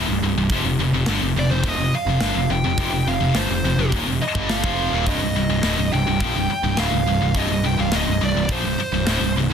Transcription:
0.08 picked electric bass C1, distorted electric guitar C2 G2
0.21 picked electric bass C1, distorted electric guitar C2 G2
0.36 picked electric bass C1, distorted electric guitar C2 G2
0.49 picked electric bass F1, distorted electric guitar F2 C3, kick, open hi-hat
0.64 picked electric bass F1, distorted electric guitar F2 C3
0.78 picked electric bass F1, distorted electric guitar F2 C3
0.93 picked electric bass F1, distorted electric guitar F2 C3
1.06 picked electric bass G1, distorted electric guitar G2 D3, snare, open hi-hat
1.21 picked electric bass F1, distorted electric guitar F2 C3
1.34 picked electric bass F1, distorted electric guitar F2 C3
1.39 lead electric guitar D5
1.50 picked electric bass F1, distorted electric guitar F2 C3, lead electric guitar C5
1.63 picked electric bass D#1, distorted electric guitar D#2 A#2, kick, open hi-hat
1.68 lead electric guitar D#5
1.78 picked electric bass F1, distorted electric guitar F2 C3
1.92 lead electric guitar F5, muted picked electric bass stroke, muted distorted electric guitar stroke
2.06 picked electric bass F1, distorted electric guitar F2 C3
2.20 picked electric bass G1, distorted electric guitar G2 D3, snare, open hi-hat
2.35 picked electric bass F1, distorted electric guitar F2 C3
2.48 picked electric bass F1, distorted electric guitar F2 C3, lead electric guitar G5
2.63 picked electric bass F1, distorted electric guitar F2 C3
2.78 picked electric bass F1, distorted electric guitar F2 C3, kick, open hi-hat
2.91 picked electric bass F1, distorted electric guitar F2 C3
3.06 picked electric bass F1, distorted electric guitar F2 C3, lead electric guitar F5
3.20 picked electric bass F1, distorted electric guitar F2 C3
3.35 picked electric bass G1, distorted electric guitar G2 D3, lead electric guitar C5, snare, open hi-hat
3.49 picked electric bass F1, distorted electric guitar F2 C3
3.63 picked electric bass F1, distorted electric guitar F2 C3
3.77 picked electric bass F1, distorted electric guitar F2 C3
3.92 picked electric bass D#1, distorted electric guitar D#2 A#2, kick, open hi-hat
4.06 picked electric bass F1, distorted electric guitar F2 C3
4.21 lead electric guitar D#5, muted picked electric bass stroke, muted distorted electric guitar stroke
4.35 picked electric bass G1, distorted electric guitar G2 D3 G3, kick
4.49 lead electric guitar F5, snare, open hi-hat
4.64 picked electric bass F1, distorted electric guitar F2 C3 F3, kick
4.92 picked electric bass D#1, distorted electric guitar D#2 A#2
5.06 picked electric bass C1, distorted electric guitar C2 G2, lead electric guitar D#5, kick, open hi-hat
5.20 picked electric bass C1, distorted electric guitar C2 G2
5.34 picked electric bass C1, distorted electric guitar C2 G2
5.48 picked electric bass C1, distorted electric guitar C2 G2
5.63 picked electric bass D1, distorted electric guitar D2 A2, snare, open hi-hat
5.77 picked electric bass C1, distorted electric guitar C2 G2
5.92 picked electric bass C1, distorted electric guitar C2 G2, lead electric guitar G5
6.07 picked electric bass C1, distorted electric guitar C2 G2
6.20 picked electric bass A#1, distorted electric guitar A#2 F3, kick, open hi-hat
6.35 picked electric bass C1, distorted electric guitar C2 G2
6.50 muted distorted electric guitar stroke, muted picked electric bass stroke
6.63 picked electric bass C1, distorted electric guitar C2 G2
6.77 picked electric bass D1, distorted electric guitar D2 A2, lead electric guitar F5, snare, open hi-hat
6.92 picked electric bass C1, distorted electric guitar C2 G2
7.06 picked electric bass C1, distorted electric guitar C2 G2
7.20 picked electric bass C1, distorted electric guitar C2 G2
7.35 picked electric bass C1, distorted electric guitar C2 G2, lead electric guitar D#5, kick, open hi-hat
7.49 picked electric bass C1, distorted electric guitar C2 G2
7.63 picked electric bass C1, distorted electric guitar C2 G2, lead electric guitar G5
7.78 picked electric bass C1, distorted electric guitar C2 G2, lead electric guitar F5
7.92 picked electric bass D1, distorted electric guitar D2 A2, snare, open hi-hat
7.96 lead electric guitar D#5
8.07 picked electric bass C1, distorted electric guitar C2 G2
8.21 picked electric bass C1, distorted electric guitar C2 G2, lead electric guitar D5
8.35 picked electric bass C1, distorted electric guitar C2 G2
8.48 picked electric bass A#1, distorted electric guitar A#2 F3, lead electric guitar C5, kick, open hi-hat
8.64 picked electric bass C1, distorted electric guitar C2 G2
8.78 muted distorted electric guitar stroke, muted picked electric bass stroke
8.92 picked electric bass C1, distorted electric guitar C2 G2
9.06 picked electric bass D1, distorted electric guitar D2 A2, snare, open hi-hat
9.21 picked electric bass C1, distorted electric guitar C2 G2
9.35 picked electric bass C1, distorted electric guitar C2 G2
9.50 distorted electric guitar C2 G2

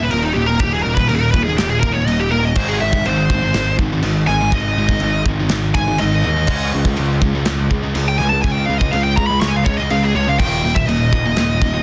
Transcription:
0.00 distorted electric guitar D#2 A#2, lead electric guitar B4
0.11 picked electric bass D#1, distorted electric guitar D#2 A#2, lead electric guitar A#4, china
0.23 lead electric guitar D#4
0.33 picked electric bass D#1, distorted electric guitar D#2 A#2, lead electric guitar G4
0.46 distorted electric guitar D#2 A#2, lead electric guitar A#4
0.59 picked electric bass D#1, distorted electric guitar D#2 A#2, lead electric guitar G4, kick, china
0.73 lead electric guitar G#4
0.83 picked electric bass D#1, distorted electric guitar D#2 A#2, lead electric guitar A#4
0.95 distorted electric guitar A#2, lead electric guitar B4, kick
0.99 distorted electric guitar D#2
1.09 picked electric bass D#1, distorted electric guitar D#2 A#2, lead electric guitar A#4, china
1.16 lead electric guitar G#4
1.21 lead electric guitar A#4
1.31 picked electric bass D#1, lead electric guitar B4, kick
1.36 distorted electric guitar D#2 A#2
1.44 distorted electric guitar D#2 A#2, lead electric guitar G#4
1.57 picked electric bass D#1, distorted electric guitar D#2 A#2, lead electric guitar G4, snare, china
1.70 lead electric guitar G#4
1.80 picked electric bass D#1, lead electric guitar A#4, kick
1.84 distorted electric guitar D#2 A#2
1.92 distorted electric guitar D#2 A#2, lead electric guitar C#5
2.06 picked electric bass D#1, distorted electric guitar D#2 A#2, lead electric guitar D#5, china
2.20 lead electric guitar G4
2.31 picked electric bass D#1, distorted electric guitar D#2 A#2, lead electric guitar A#4
2.43 distorted electric guitar D#2 A#2, lead electric guitar D#5
2.56 picked electric bass G#1, distorted electric guitar G#2 D#3 G#3, lead electric guitar C5, kick, crash, china
2.68 lead electric guitar G#4
2.81 picked electric bass G#1, distorted electric guitar G#2 D#3, lead electric guitar E5
2.93 distorted electric guitar G#2 D#3, kick
3.05 picked electric bass G#1, distorted electric guitar G#2 D#3, lead electric guitar C5, china
3.30 picked electric bass G#1, distorted electric guitar G#2 D#3, kick
3.43 distorted electric guitar G#2 D#3
3.54 picked electric bass G#1, distorted electric guitar G#2 D#3, snare, china
3.78 picked electric bass G#1, distorted electric guitar G#2 D#3, kick
3.93 distorted electric guitar G#2 D#3
4.02 picked electric bass G#1, distorted electric guitar G#2 D#3, china
4.27 picked electric bass G#1, distorted electric guitar G#2 D#3, lead electric guitar G#5
4.41 distorted electric guitar G#2 D#3
4.52 picked electric bass G#1, distorted electric guitar G#2 D#3, lead electric guitar D#5, kick, china
4.76 picked electric bass G#1, distorted electric guitar G#2 D#3
4.89 distorted electric guitar G#2 D#3, kick
5.00 picked electric bass G#1, distorted electric guitar G#2, china
5.04 distorted electric guitar D#3
5.26 picked electric bass G#1, distorted electric guitar G#2 D#3, kick
5.39 distorted electric guitar G#2 D#3
5.49 picked electric bass G#1, distorted electric guitar G#2 D#3, snare, china
5.74 picked electric bass G#1, distorted electric guitar G#2 D#3, lead electric guitar G#5, kick
5.88 distorted electric guitar G#2 D#3
5.98 picked electric bass G#1, distorted electric guitar G#2 D#3, lead electric guitar D#5, china
6.24 picked electric bass D#2, distorted electric guitar G#2 D#3
6.37 distorted electric guitar G#2 D#3
6.47 picked electric bass C#2, distorted electric guitar C#3 G#3 C#4, kick, crash, china
6.73 picked electric bass C#2, distorted electric guitar C#3 G#3
6.85 distorted electric guitar C#3 G#3, kick
6.96 picked electric bass C#2, distorted electric guitar C#3 G#3, china
7.22 picked electric bass C#2, distorted electric guitar C#3 G#3, kick
7.35 distorted electric guitar C#3 G#3
7.45 picked electric bass C#2, distorted electric guitar C#3 G#3, snare, china
7.71 picked electric bass C#2, distorted electric guitar C#3 G#3, kick
7.83 distorted electric guitar C#3 G#3
7.95 picked electric bass C#2, distorted electric guitar C#3 G#3, china
8.08 lead electric guitar G5
8.18 picked electric bass C#2, distorted electric guitar C#3 G#3, lead electric guitar G#5
8.29 distorted electric guitar C#3 G#3, lead electric guitar A5
8.42 picked electric bass C#2, distorted electric guitar C#3 G#3, lead electric guitar G#5, kick, china
8.53 lead electric guitar G5
8.66 picked electric bass C#2, lead electric guitar F5
8.70 distorted electric guitar C#3 G#3
8.78 distorted electric guitar C#3 G#3, lead electric guitar D#5, kick
8.92 picked electric bass C#2, distorted electric guitar C#3 G#3, lead electric guitar F5, china
9.04 lead electric guitar G5
9.16 picked electric bass C#2, distorted electric guitar C#3 G#3, lead electric guitar A#5, kick
9.26 distorted electric guitar C#3 G#3, lead electric guitar B5
9.40 picked electric bass C#2, distorted electric guitar C#3 G#3, lead electric guitar C#6, snare, china
9.48 lead electric guitar G#5
9.56 lead electric guitar F5
9.64 picked electric bass C#2, distorted electric guitar C#3 G#3, lead electric guitar C#5, kick
9.77 distorted electric guitar C#3 G#3, lead electric guitar D#5
9.90 picked electric bass C#2, distorted electric guitar C#3 G#3, lead electric guitar F5, china
10.03 lead electric guitar G#4
10.15 picked electric bass C#2, distorted electric guitar C#3 G#3, lead electric guitar C#5
10.28 distorted electric guitar C#3 G#3, lead electric guitar F5
10.39 picked electric bass D#1, distorted electric guitar D#2 A#2 D#3, lead electric guitar G5, kick, china, crash
10.63 picked electric bass D#1, distorted electric guitar D#2 A#2
10.75 distorted electric guitar D#2 A#2, lead electric guitar E5, kick
10.87 picked electric bass D#1, distorted electric guitar D#2 A#2, lead electric guitar D#5, china
11.12 picked electric bass D#1, distorted electric guitar D#2 A#2, kick
11.25 distorted electric guitar D#2 A#2
11.36 picked electric bass D#1, distorted electric guitar D#2 A#2, snare, china
11.61 picked electric bass D#1, distorted electric guitar D#2 A#2, kick
11.74 distorted electric guitar D#2 A#2

